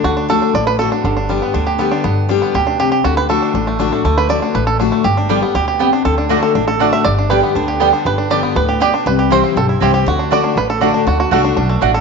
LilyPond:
<<
  \new Staff \with { instrumentName = "Mandolin" } { \time 4/4 \key g \major \tempo 4 = 239 r1 | r1 | r1 | r1 |
r1 | r4 <b g' d'' g''>8 r4. <b g' d'' g''>8 r8 | r4 <a fis' d'' fis''>8 r4. <a fis' d'' fis''>8 r8 | r4 <b g' d'' g''>8 r4. <b g' d'' g''>8 r8 |
r4 <b g' d'' g''>8 r4. <b g' d'' g''>8 r8 | r4 <c' e' c'' g''>8 r4. <c' e' c'' g''>8 r8 | r4 <a fis' d'' fis''>8 r4. <a fis' d'' fis''>8 r8 | r4 <a fis' d'' fis''>8 r4. <a fis' d'' fis''>8 r8 | }
  \new Staff \with { instrumentName = "Five-string banjo" } { \time 4/4 \key g \major << { fis'4 a'4 d''8 b'8 a'4~ | a'4. r2 r8 | r2 g'4 g'4 | fis'8 b'8 a'2~ a'8 r8 |
r8 b'8 d''4 b'8 a'4. | g'4 r4 g'2 | a'4. a'8 r8 a'4 e''8 | d''4 b'4. r4. |
b'4 d''4 b'4 g'8 r8 | b'4 c''4 a'4 g'8 r8 | fis'4 d''4 b'8 a'4. | fis'8 fis'8 a'4. r4 a'8 | } \\ { d'8 d'4 d'4. r8 d'8 | d8 d'8 g8 b8 d'8 g'8 b8 d'8 | b4 d'8 b4 d'4 g'8 | r4. d'8 d'8 a8 d'8 a8 |
a4. d'4. d'8 a8 | r8 d'8 g8 b4 g'8 b8 d'8 | r8 d'8 a4 d'4 d'4 | r8 d'4 b8 d'8 g'8 b8 d'8~ |
d'8 d'4 b4 g'4 d'8 | r8 g'4 c'4 e'4 g'8 | r8 d'4 d'4. d'8 d'8~ | d'4 r8 d'8 d'8 a8 d'4 | } >> }
  \new Staff \with { instrumentName = "Steel-string acoustic guitar" } { \clef bass \time 4/4 \key g \major << { r4 <d a d' fis'>4 r4 <d a d' fis'>8 <d' fis'>8 | r4 <d g b g'>4 r4 <d g b g'>4 | r4 <d g b g'>4 r2 | r4 <d a d' fis'>4 r4 <d a d' fis'>8 <d' fis'>8 |
r4 <d a d' fis'>4 r4 <d a d' fis'>4 | r4 <d g b g'>8 <b g'>8 r2 | r4 <d a d' fis'>4 r4 <d a d' fis'>4 | r4 <d g b g'>4 r4 <d g b g'>4 |
r4 <d g b g'>4 r2 | r4 <e g c' e'>4 r4 <e g c' e'>4 | r4 <d a d' fis'>4 r4 <d a d' fis'>4 | r4 <d a d' fis'>4 r2 | } \\ { d2 a,2 | g,2 d2 | g,2 b,4 c4 | d2 a,2 |
d2 a,2 | g,2 b,4 c4 | d2 a,2 | g,2 d2 |
g,2 a,4 b,4 | c2 g,2 | d2 a,2 | d2 b,4 a,4 | } >> }
  \new Staff \with { instrumentName = "Upright bass" } { \clef bass \time 4/4 \key g \major d,2 a,,2 | g,,2 d,2 | g,,2 d,2 | d,2 a,,2 |
d,2 a,,2 | g,,2 d,2 | d,2 a,,2 | g,,2 d,2 |
g,,2 d,2 | c,2 b,,4 c,4 | d,2 a,,2 | d,4 c,4 b,,4 a,,4 | }
>>